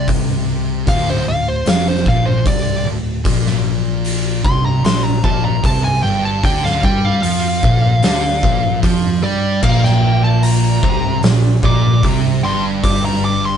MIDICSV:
0, 0, Header, 1, 5, 480
1, 0, Start_track
1, 0, Tempo, 794702
1, 48, Time_signature, 4, 2, 24, 8
1, 4368, Tempo, 802139
1, 8163, End_track
2, 0, Start_track
2, 0, Title_t, "Lead electric guitar"
2, 0, Program_c, 0, 29
2, 535, Note_on_c, 0, 77, 87
2, 646, Note_off_c, 0, 77, 0
2, 664, Note_on_c, 0, 72, 92
2, 771, Note_off_c, 0, 72, 0
2, 775, Note_on_c, 0, 77, 101
2, 886, Note_off_c, 0, 77, 0
2, 895, Note_on_c, 0, 72, 103
2, 1006, Note_off_c, 0, 72, 0
2, 1021, Note_on_c, 0, 77, 95
2, 1129, Note_off_c, 0, 77, 0
2, 1136, Note_on_c, 0, 72, 83
2, 1246, Note_off_c, 0, 72, 0
2, 1258, Note_on_c, 0, 77, 98
2, 1363, Note_on_c, 0, 72, 84
2, 1367, Note_off_c, 0, 77, 0
2, 1479, Note_off_c, 0, 72, 0
2, 1495, Note_on_c, 0, 74, 105
2, 1722, Note_off_c, 0, 74, 0
2, 2687, Note_on_c, 0, 84, 106
2, 2801, Note_off_c, 0, 84, 0
2, 2812, Note_on_c, 0, 82, 95
2, 2924, Note_off_c, 0, 82, 0
2, 2930, Note_on_c, 0, 84, 92
2, 3043, Note_off_c, 0, 84, 0
2, 3045, Note_on_c, 0, 82, 82
2, 3161, Note_off_c, 0, 82, 0
2, 3168, Note_on_c, 0, 81, 86
2, 3282, Note_off_c, 0, 81, 0
2, 3291, Note_on_c, 0, 82, 90
2, 3404, Note_off_c, 0, 82, 0
2, 3417, Note_on_c, 0, 81, 100
2, 3527, Note_off_c, 0, 81, 0
2, 3529, Note_on_c, 0, 80, 85
2, 3638, Note_off_c, 0, 80, 0
2, 3641, Note_on_c, 0, 79, 90
2, 3759, Note_off_c, 0, 79, 0
2, 3776, Note_on_c, 0, 81, 91
2, 3887, Note_off_c, 0, 81, 0
2, 3894, Note_on_c, 0, 79, 88
2, 4006, Note_off_c, 0, 79, 0
2, 4012, Note_on_c, 0, 77, 86
2, 4125, Note_off_c, 0, 77, 0
2, 4134, Note_on_c, 0, 79, 92
2, 4247, Note_off_c, 0, 79, 0
2, 4257, Note_on_c, 0, 77, 86
2, 4358, Note_off_c, 0, 77, 0
2, 4365, Note_on_c, 0, 77, 95
2, 5299, Note_off_c, 0, 77, 0
2, 5567, Note_on_c, 0, 74, 105
2, 5798, Note_off_c, 0, 74, 0
2, 5808, Note_on_c, 0, 77, 92
2, 5922, Note_off_c, 0, 77, 0
2, 5931, Note_on_c, 0, 79, 101
2, 6160, Note_off_c, 0, 79, 0
2, 6170, Note_on_c, 0, 81, 86
2, 6283, Note_off_c, 0, 81, 0
2, 6283, Note_on_c, 0, 82, 107
2, 6749, Note_off_c, 0, 82, 0
2, 7015, Note_on_c, 0, 86, 102
2, 7243, Note_off_c, 0, 86, 0
2, 7488, Note_on_c, 0, 84, 94
2, 7603, Note_off_c, 0, 84, 0
2, 7722, Note_on_c, 0, 86, 92
2, 7841, Note_off_c, 0, 86, 0
2, 7851, Note_on_c, 0, 82, 107
2, 7966, Note_off_c, 0, 82, 0
2, 7968, Note_on_c, 0, 86, 96
2, 8084, Note_off_c, 0, 86, 0
2, 8092, Note_on_c, 0, 84, 96
2, 8163, Note_off_c, 0, 84, 0
2, 8163, End_track
3, 0, Start_track
3, 0, Title_t, "Distorted electric guitar"
3, 0, Program_c, 1, 30
3, 0, Note_on_c, 1, 48, 101
3, 516, Note_off_c, 1, 48, 0
3, 526, Note_on_c, 1, 38, 105
3, 758, Note_off_c, 1, 38, 0
3, 768, Note_on_c, 1, 38, 71
3, 958, Note_off_c, 1, 38, 0
3, 998, Note_on_c, 1, 41, 96
3, 1233, Note_off_c, 1, 41, 0
3, 1240, Note_on_c, 1, 46, 97
3, 1474, Note_off_c, 1, 46, 0
3, 1477, Note_on_c, 1, 48, 114
3, 1713, Note_off_c, 1, 48, 0
3, 1720, Note_on_c, 1, 38, 79
3, 1913, Note_off_c, 1, 38, 0
3, 1959, Note_on_c, 1, 46, 108
3, 2673, Note_off_c, 1, 46, 0
3, 2681, Note_on_c, 1, 48, 102
3, 2915, Note_off_c, 1, 48, 0
3, 2920, Note_on_c, 1, 46, 74
3, 3114, Note_off_c, 1, 46, 0
3, 3162, Note_on_c, 1, 46, 104
3, 3396, Note_off_c, 1, 46, 0
3, 3402, Note_on_c, 1, 48, 111
3, 3636, Note_off_c, 1, 48, 0
3, 3646, Note_on_c, 1, 43, 101
3, 3879, Note_off_c, 1, 43, 0
3, 3889, Note_on_c, 1, 50, 101
3, 4121, Note_off_c, 1, 50, 0
3, 4126, Note_on_c, 1, 55, 100
3, 4360, Note_off_c, 1, 55, 0
3, 4368, Note_on_c, 1, 53, 97
3, 4600, Note_off_c, 1, 53, 0
3, 4607, Note_on_c, 1, 46, 94
3, 4839, Note_off_c, 1, 46, 0
3, 4845, Note_on_c, 1, 50, 98
3, 5078, Note_off_c, 1, 50, 0
3, 5086, Note_on_c, 1, 46, 93
3, 5318, Note_off_c, 1, 46, 0
3, 5323, Note_on_c, 1, 53, 104
3, 5556, Note_off_c, 1, 53, 0
3, 5561, Note_on_c, 1, 55, 104
3, 5795, Note_off_c, 1, 55, 0
3, 5800, Note_on_c, 1, 46, 106
3, 6515, Note_off_c, 1, 46, 0
3, 6518, Note_on_c, 1, 48, 91
3, 6754, Note_off_c, 1, 48, 0
3, 6759, Note_on_c, 1, 46, 70
3, 6954, Note_off_c, 1, 46, 0
3, 6997, Note_on_c, 1, 46, 104
3, 7234, Note_off_c, 1, 46, 0
3, 7238, Note_on_c, 1, 48, 112
3, 7473, Note_off_c, 1, 48, 0
3, 7476, Note_on_c, 1, 43, 102
3, 8163, Note_off_c, 1, 43, 0
3, 8163, End_track
4, 0, Start_track
4, 0, Title_t, "Fingered electric bass"
4, 0, Program_c, 2, 33
4, 0, Note_on_c, 2, 36, 96
4, 500, Note_off_c, 2, 36, 0
4, 526, Note_on_c, 2, 26, 89
4, 749, Note_off_c, 2, 26, 0
4, 765, Note_on_c, 2, 26, 78
4, 987, Note_off_c, 2, 26, 0
4, 999, Note_on_c, 2, 29, 101
4, 1224, Note_off_c, 2, 29, 0
4, 1246, Note_on_c, 2, 34, 92
4, 1467, Note_off_c, 2, 34, 0
4, 1486, Note_on_c, 2, 36, 94
4, 1707, Note_off_c, 2, 36, 0
4, 1718, Note_on_c, 2, 26, 83
4, 1943, Note_off_c, 2, 26, 0
4, 1963, Note_on_c, 2, 34, 97
4, 2658, Note_off_c, 2, 34, 0
4, 2684, Note_on_c, 2, 36, 94
4, 2907, Note_off_c, 2, 36, 0
4, 2918, Note_on_c, 2, 34, 86
4, 3143, Note_off_c, 2, 34, 0
4, 3163, Note_on_c, 2, 34, 97
4, 3387, Note_off_c, 2, 34, 0
4, 3404, Note_on_c, 2, 36, 98
4, 3628, Note_off_c, 2, 36, 0
4, 3645, Note_on_c, 2, 31, 102
4, 3868, Note_off_c, 2, 31, 0
4, 3886, Note_on_c, 2, 38, 95
4, 4110, Note_off_c, 2, 38, 0
4, 4126, Note_on_c, 2, 43, 101
4, 4350, Note_off_c, 2, 43, 0
4, 4367, Note_on_c, 2, 41, 83
4, 4590, Note_off_c, 2, 41, 0
4, 4608, Note_on_c, 2, 34, 94
4, 4830, Note_off_c, 2, 34, 0
4, 4846, Note_on_c, 2, 38, 98
4, 5069, Note_off_c, 2, 38, 0
4, 5087, Note_on_c, 2, 34, 90
4, 5308, Note_off_c, 2, 34, 0
4, 5324, Note_on_c, 2, 41, 93
4, 5547, Note_off_c, 2, 41, 0
4, 5565, Note_on_c, 2, 43, 88
4, 5788, Note_off_c, 2, 43, 0
4, 5800, Note_on_c, 2, 34, 96
4, 6498, Note_off_c, 2, 34, 0
4, 6522, Note_on_c, 2, 36, 91
4, 6746, Note_off_c, 2, 36, 0
4, 6761, Note_on_c, 2, 34, 85
4, 6986, Note_off_c, 2, 34, 0
4, 7000, Note_on_c, 2, 34, 100
4, 7226, Note_off_c, 2, 34, 0
4, 7240, Note_on_c, 2, 36, 99
4, 7466, Note_off_c, 2, 36, 0
4, 7479, Note_on_c, 2, 31, 92
4, 8163, Note_off_c, 2, 31, 0
4, 8163, End_track
5, 0, Start_track
5, 0, Title_t, "Drums"
5, 47, Note_on_c, 9, 46, 61
5, 48, Note_on_c, 9, 36, 98
5, 107, Note_off_c, 9, 46, 0
5, 108, Note_off_c, 9, 36, 0
5, 527, Note_on_c, 9, 36, 111
5, 527, Note_on_c, 9, 46, 60
5, 587, Note_off_c, 9, 36, 0
5, 587, Note_off_c, 9, 46, 0
5, 1003, Note_on_c, 9, 46, 66
5, 1012, Note_on_c, 9, 38, 111
5, 1063, Note_off_c, 9, 46, 0
5, 1072, Note_off_c, 9, 38, 0
5, 1245, Note_on_c, 9, 36, 107
5, 1305, Note_off_c, 9, 36, 0
5, 1483, Note_on_c, 9, 46, 64
5, 1484, Note_on_c, 9, 36, 107
5, 1543, Note_off_c, 9, 46, 0
5, 1544, Note_off_c, 9, 36, 0
5, 1963, Note_on_c, 9, 36, 99
5, 1963, Note_on_c, 9, 46, 63
5, 2023, Note_off_c, 9, 46, 0
5, 2024, Note_off_c, 9, 36, 0
5, 2093, Note_on_c, 9, 38, 31
5, 2153, Note_off_c, 9, 38, 0
5, 2444, Note_on_c, 9, 46, 57
5, 2504, Note_off_c, 9, 46, 0
5, 2685, Note_on_c, 9, 36, 106
5, 2746, Note_off_c, 9, 36, 0
5, 2927, Note_on_c, 9, 46, 61
5, 2936, Note_on_c, 9, 38, 114
5, 2987, Note_off_c, 9, 46, 0
5, 2997, Note_off_c, 9, 38, 0
5, 3165, Note_on_c, 9, 36, 108
5, 3225, Note_off_c, 9, 36, 0
5, 3405, Note_on_c, 9, 36, 112
5, 3407, Note_on_c, 9, 46, 62
5, 3465, Note_off_c, 9, 36, 0
5, 3467, Note_off_c, 9, 46, 0
5, 3887, Note_on_c, 9, 36, 111
5, 3887, Note_on_c, 9, 46, 58
5, 3947, Note_off_c, 9, 36, 0
5, 3948, Note_off_c, 9, 46, 0
5, 4019, Note_on_c, 9, 38, 33
5, 4079, Note_off_c, 9, 38, 0
5, 4128, Note_on_c, 9, 36, 109
5, 4188, Note_off_c, 9, 36, 0
5, 4367, Note_on_c, 9, 46, 63
5, 4427, Note_off_c, 9, 46, 0
5, 4607, Note_on_c, 9, 36, 111
5, 4667, Note_off_c, 9, 36, 0
5, 4843, Note_on_c, 9, 46, 66
5, 4852, Note_on_c, 9, 38, 108
5, 4903, Note_off_c, 9, 46, 0
5, 4912, Note_off_c, 9, 38, 0
5, 5086, Note_on_c, 9, 36, 115
5, 5146, Note_off_c, 9, 36, 0
5, 5325, Note_on_c, 9, 36, 105
5, 5325, Note_on_c, 9, 46, 60
5, 5385, Note_off_c, 9, 36, 0
5, 5385, Note_off_c, 9, 46, 0
5, 5801, Note_on_c, 9, 49, 98
5, 5803, Note_on_c, 9, 36, 105
5, 5860, Note_off_c, 9, 49, 0
5, 5862, Note_off_c, 9, 36, 0
5, 5931, Note_on_c, 9, 38, 30
5, 5991, Note_off_c, 9, 38, 0
5, 6280, Note_on_c, 9, 46, 60
5, 6340, Note_off_c, 9, 46, 0
5, 6521, Note_on_c, 9, 36, 114
5, 6581, Note_off_c, 9, 36, 0
5, 6758, Note_on_c, 9, 46, 59
5, 6767, Note_on_c, 9, 38, 107
5, 6818, Note_off_c, 9, 46, 0
5, 6827, Note_off_c, 9, 38, 0
5, 7000, Note_on_c, 9, 36, 105
5, 7060, Note_off_c, 9, 36, 0
5, 7241, Note_on_c, 9, 36, 100
5, 7242, Note_on_c, 9, 46, 56
5, 7301, Note_off_c, 9, 36, 0
5, 7302, Note_off_c, 9, 46, 0
5, 7721, Note_on_c, 9, 46, 60
5, 7722, Note_on_c, 9, 36, 102
5, 7781, Note_off_c, 9, 36, 0
5, 7781, Note_off_c, 9, 46, 0
5, 8163, End_track
0, 0, End_of_file